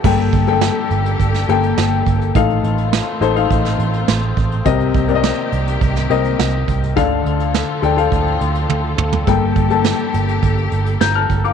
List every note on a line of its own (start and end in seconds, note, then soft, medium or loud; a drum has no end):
0.04 0.28 G1 medium
0.04 0.87 G2 medium
0.04 2.33 D3 medium
0.04 2.33 A#3 medium
0.04 0.39 A#3 medium
0.04 2.33 G4 medium
0.04 2.33 A4 medium
0.04 0.39 A4 medium
0.04 0.39 G5 medium
0.04 kick medium
0.04 crash medium
0.33 0.68 G1 medium
0.33 kick medium
0.33 closed hi-hat medium
0.47 1.28 A#3 medium
0.47 1.28 A4 medium
0.47 1.29 G5 medium
0.47 closed hi-hat soft
0.61 snare medium
0.91 1.14 G1 medium
0.91 closed hi-hat medium
1.06 closed hi-hat soft
1.20 1.43 G1 medium
1.20 kick medium
1.20 closed hi-hat medium
1.34 snare soft
1.49 1.72 G1 medium
1.49 2.18 A#3 medium
1.49 2.18 A4 medium
1.49 2.18 G5 medium
1.49 closed hi-hat medium
1.63 closed hi-hat soft
1.78 2.01 G1 medium
1.78 snare medium
1.92 closed hi-hat soft
2.06 2.30 G1 medium
2.06 kick medium
2.06 closed hi-hat medium
2.21 closed hi-hat soft
2.35 2.59 A1 medium
2.35 3.18 A2 medium
2.35 4.64 D#3 medium
2.35 4.64 A3 medium
2.35 6.93 C4 medium
2.35 3.05 D#4 medium
2.35 4.64 F4 medium
2.35 3.05 A4 medium
2.35 3.05 F5 medium
2.35 kick medium
2.35 closed hi-hat medium
2.50 closed hi-hat soft
2.64 2.99 A1 medium
2.64 closed hi-hat medium
2.78 closed hi-hat soft
2.93 snare medium
3.08 closed hi-hat soft
3.21 3.45 A1 medium
3.21 3.33 D#4 medium
3.21 3.33 A4 medium
3.21 3.33 C5 medium
3.21 closed hi-hat medium
3.36 4.28 D#4 medium
3.36 4.28 A4 medium
3.36 4.29 F5 medium
3.36 closed hi-hat soft
3.51 3.74 A1 medium
3.51 kick medium
3.51 closed hi-hat medium
3.65 snare soft
3.79 4.03 A1 medium
3.79 closed hi-hat medium
3.93 closed hi-hat soft
4.08 4.32 A1 medium
4.08 snare medium
4.37 4.61 A1 medium
4.37 kick medium
4.37 closed hi-hat soft
4.52 closed hi-hat soft
4.65 4.89 C2 medium
4.65 5.48 C3 medium
4.65 6.95 D#3 medium
4.65 6.94 A#3 medium
4.65 5.00 C4 medium
4.65 6.95 G4 medium
4.65 5.00 A#4 medium
4.65 5.00 D#5 medium
4.65 kick medium
4.65 closed hi-hat medium
4.80 closed hi-hat soft
4.94 5.30 C2 medium
4.94 kick medium
4.94 closed hi-hat medium
5.08 5.89 C4 medium
5.08 5.90 A#4 medium
5.08 5.15 D5 medium
5.08 closed hi-hat soft
5.15 5.93 D#5 medium
5.24 snare medium
5.52 5.76 C2 medium
5.52 closed hi-hat medium
5.67 closed hi-hat soft
5.81 6.05 C2 medium
5.81 kick medium
5.81 closed hi-hat medium
5.96 snare soft
6.10 6.34 C2 medium
6.10 6.79 C4 medium
6.10 6.80 A#4 medium
6.10 6.80 D#5 medium
6.10 closed hi-hat medium
6.24 closed hi-hat soft
6.39 6.63 C2 medium
6.39 snare medium
6.68 6.92 C2 medium
6.68 kick medium
6.68 closed hi-hat medium
6.83 closed hi-hat soft
6.96 7.20 D2 medium
6.96 7.79 D3 medium
6.96 11.53 D3 medium
6.96 9.26 F3 medium
6.96 7.66 D4 medium
6.96 9.26 F4 medium
6.96 7.66 A4 medium
6.96 11.53 A4 medium
6.96 7.66 F5 medium
6.96 kick medium
6.96 closed hi-hat medium
7.25 7.61 D2 medium
7.25 closed hi-hat medium
7.40 closed hi-hat soft
7.54 snare medium
7.82 8.07 D2 medium
7.82 7.94 D4 medium
7.82 7.95 A4 medium
7.82 7.95 G5 medium
7.82 closed hi-hat medium
7.97 8.90 D4 medium
7.97 8.90 A4 medium
7.97 8.90 F5 medium
7.97 closed hi-hat soft
8.12 8.36 D2 medium
8.12 kick medium
8.12 closed hi-hat medium
8.27 closed hi-hat soft
8.41 8.65 D2 medium
8.41 closed hi-hat medium
8.55 closed hi-hat soft
8.69 8.93 D2 medium
8.69 high tom soft
8.98 9.22 D2 medium
8.98 mid tom medium
9.12 floor tom medium
9.27 9.51 G1 medium
9.27 10.10 G2 medium
9.27 11.53 A#3 medium
9.27 9.62 A#3 medium
9.27 11.53 G4 medium
9.27 9.62 A4 medium
9.27 9.63 G5 medium
9.27 kick medium
9.27 closed hi-hat medium
9.56 9.92 G1 medium
9.56 kick medium
9.56 closed hi-hat medium
9.70 10.52 A#3 medium
9.70 10.52 A4 medium
9.70 10.52 A5 medium
9.70 closed hi-hat soft
9.84 snare medium
10.14 10.38 G1 medium
10.14 closed hi-hat medium
10.29 closed hi-hat soft
10.43 10.67 G1 medium
10.43 kick medium
10.43 closed hi-hat medium
10.58 closed hi-hat soft
10.71 10.96 G1 medium
10.71 closed hi-hat medium
10.86 closed hi-hat soft
11.01 11.24 G1 medium
11.01 11.15 A#5 soft
11.01 11.14 G6 medium
11.01 snare medium
11.15 11.43 A5 medium
11.15 11.43 F6 medium
11.30 11.53 G1 medium
11.30 kick medium
11.30 closed hi-hat medium
11.45 11.53 F5 soft
11.45 11.53 D6 medium
11.45 closed hi-hat soft